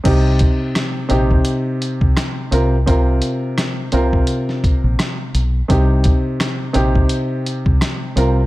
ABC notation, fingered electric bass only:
X:1
M:4/4
L:1/16
Q:"Swing 16ths" 1/4=85
K:Cm
V:1 name="Fingered electric bass" clef=bass
C,,3 z3 B,,,2 z3 C,, z2 C,,2- | C,,3 z3 C,,2 z3 B,,, z2 =B,,,2 | C,,3 z3 B,,,2 z3 C,, z2 C,,2 |]